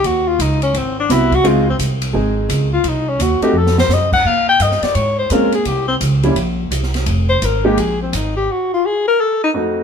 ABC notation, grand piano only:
X:1
M:4/4
L:1/8
Q:"Swing" 1/4=170
K:Fm
V:1 name="Grand piano"
z6 [=B,C=E_G] z | [A,CEF] z3 [A,CEA]3 z | z3 [=A,CE_G] z4 | z6 [A,CDF] z |
z3 [G,B,D=E] z4 | z3 [A,B,EG] z4 | z6 [F,,=A,CE_G]2 |]